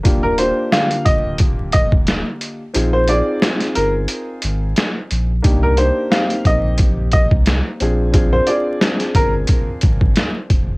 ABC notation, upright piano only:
X:1
M:4/4
L:1/16
Q:"Swing 16ths" 1/4=89
K:Bbmix
V:1 name="Upright piano"
z B c2 f2 e2 z2 e z4 z | z c d2 z2 B z8 z | z B c2 f2 e2 z2 e z4 z | z c d2 z2 B z8 z |]